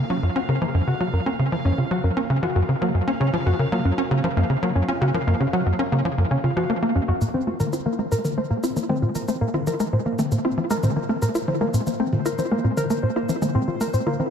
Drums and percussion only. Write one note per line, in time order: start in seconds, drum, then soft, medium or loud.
7.21 shaker medium
7.60 high tom soft
7.60 shaker medium
7.73 shaker medium
8.12 shaker medium
8.25 high tom soft
8.25 shaker soft
8.64 shaker medium
8.77 shaker medium
8.90 high tom soft
9.15 shaker medium
9.28 shaker medium
9.54 high tom soft
9.67 shaker medium
9.80 shaker medium
10.19 high tom soft
10.19 shaker medium
10.32 shaker medium
10.70 shaker medium
10.83 high tom soft
10.83 shaker medium
11.22 shaker medium
11.35 shaker medium
11.48 high tom soft
11.74 shaker medium
11.87 shaker medium
12.13 high tom soft
12.26 shaker medium
12.39 shaker medium
12.77 high tom soft
12.77 shaker medium
12.90 shaker medium
13.29 shaker medium
13.42 high tom soft
13.42 shaker medium
13.81 shaker medium
13.94 shaker medium
14.07 high tom soft